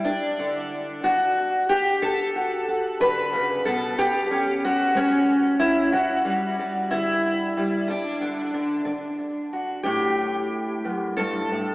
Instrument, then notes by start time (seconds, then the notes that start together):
steel-string acoustic guitar
0.04 D2 D4
0.39 D3
1.04 D3 F#4
1.69 G4
2.02 B2 A4
2.36 F#4
2.68 F#4
3.00 D3 B4
3.33 C#3
3.65 B2 A4
3.98 A2 G4
4.31 C#4
4.65 F#4
4.95 A3 C#4
5.59 E4
5.92 B2 F#4
6.25 G3
6.59 G3
6.91 D3 E4
7.57 G3
7.88 D2 D4
8.21 D3
8.54 D3
8.85 D3
9.53 F#4
9.83 A2 G4
10.84 F#2
11.17 G2 A4
11.51 A2